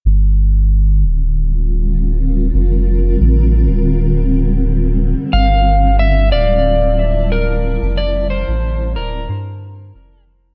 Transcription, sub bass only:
X:1
M:4/4
L:1/16
Q:"Swing 16ths" 1/4=91
K:Gdor
V:1 name="Sub bass" clef=bass
G,,,6 D,,,8- D,,, F,,,- | F,,,3 A,,,3 D,,,8- D,,, z | G,,,6 D,,,8- D,,, F,,,- | F,,,3 A,,,3 D,,,2 G,,4 F,,,4 |]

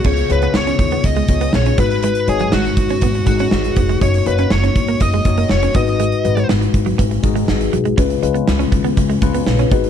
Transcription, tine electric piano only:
X:1
M:4/4
L:1/8
Q:1/4=121
K:G#dor
V:1 name="Tine electric piano"
[B,EGc] [B,DEGc]4 [B,EGc]2 [G,DFB]- | [G,DFB] [G,DFc]4 [G,DFG]3 | [A,DFc] [A,DFc]4 [A,DFc]2 [G,DFB]- | [G,DFB] [G,DFB]4 [G,DFG]3 |
[G,CEB] [G,CEB]4 [G,CEB]2 [G,DFB] |]
V:2 name="Tine electric piano" clef=bass
C,3 z4 G,,- | G,,2 z6 | z6 z G,,- | G,,2 z6 |
C,3 z4 G,, |]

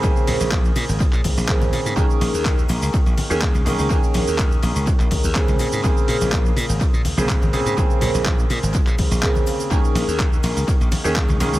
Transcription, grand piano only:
X:1
M:4/4
L:1/16
Q:1/4=124
K:Bbm
V:1 name="Grand piano"
[D,B,CA]12 [D,B,CA]4 | [E,B,DA]8- [E,B,DA]3 [E,B,DA]3 [E,B,DA]2 | [E,B,DA]12 [D,B,CA]4 | [D,B,CA]8- [D,B,CA]3 [D,B,CA]3 [D,B,CA]2 |
[D,B,CA]12 [D,B,CA]4 | [E,B,DA]8- [E,B,DA]3 [E,B,DA]3 [E,B,DA]2 |]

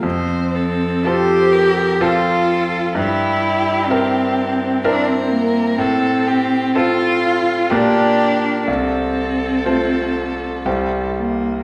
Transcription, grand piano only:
X:1
M:3/4
L:1/8
Q:1/4=62
K:F
V:1 name="Grand piano"
F,,2 [CFA]2 [CFA]2 | G,,2 [CEB]2 [CEB]2 | A,,2 [CFA]2 [B,,B,DG]2 | C,,2 [A,Fc]2 [C,,G,Ec]2 |]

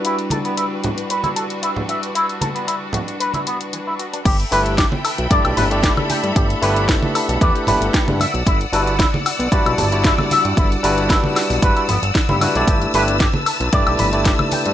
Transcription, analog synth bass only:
X:1
M:4/4
L:1/16
Q:1/4=114
K:G
V:1 name="Analog synth bass" clef=bass
z16 | z16 | G,,, z G,,,3 z2 B,,, G,, B,,, G,,,3 z2 G,, | G,,, z G,,,3 z2 B,,, E,, z G,,, G,,, z G,, z B,,, |
G,,, z G,,,3 z2 B,,, G,, B,,, G,,,3 z2 G,, | G,,, z G,,,3 z2 B,,, G,,, z G,,, G,,, z G,, z B,,, | G,,, z G,,,3 z2 B,,, G,, B,,, G,,,3 z2 G,, |]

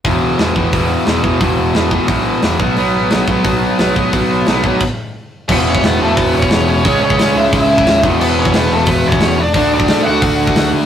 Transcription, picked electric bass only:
X:1
M:4/4
L:1/8
Q:1/4=177
K:E
V:1 name="Picked electric bass" clef=bass
E,,, C,, E,,, E,,, E,,,2 E,,, E,,, | E,,, E,,, E,,,2 B,,,2 E,,, B,,, | B,,, A,,, B,,, B,,, B,,,2 B,,, B,,, | B,,, B,,, B,,,2 z4 |
E,,,2 E,,, E,,, E,,, E,,, E,,,2 | C,, C,, C,, C,, C,,2 D,, E,,, | E,,,2 E,,, E,,, E,,, E,,, E,,,2 | =D,, D,, D,, D,, D,,2 D,, D,, |]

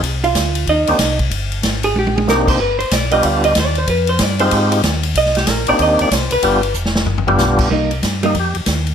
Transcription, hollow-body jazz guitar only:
X:1
M:4/4
L:1/8
Q:"Swing" 1/4=187
K:Cm
V:1 name="Hollow-body jazz guitar"
z [Ff]3 [Ee]3 z | z3 A G A B c | =B c d e f e d c | =B c d c2 z3 |
e G B d e d c =B- | =B2 z6 | [G,B,E] z2 [G,B,E] z4 |]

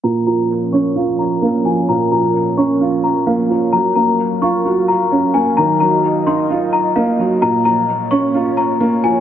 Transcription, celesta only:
X:1
M:4/4
L:1/8
Q:1/4=130
K:Bbm
V:1 name="Celesta"
b b z d' z b2 a | b b z d' z b f2 | b b z d' z b2 a | b b z c' z b f2 |
b b z d' z b2 a |]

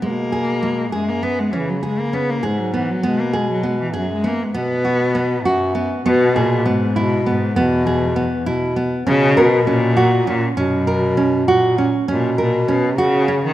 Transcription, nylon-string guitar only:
X:1
M:5/8
L:1/8
Q:1/4=100
K:Elyd
V:1 name="Nylon-string guitar"
G, G G, G B, | C G C G B, | B, G B, G B, | B, F B, F B, |
B, G B, E B, | B, G B, E B, | C A C F C | C A C F C |
C A C F C |]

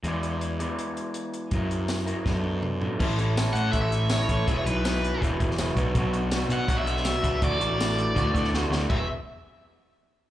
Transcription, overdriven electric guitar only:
X:1
M:4/4
L:1/16
Q:1/4=163
K:Emix
V:1 name="Overdriven electric guitar"
z16 | z16 | z6 f2 e e3 c c3 | e c B6 z8 |
z6 f3 e6- e | d12 z4 | e2 z12 z2 |]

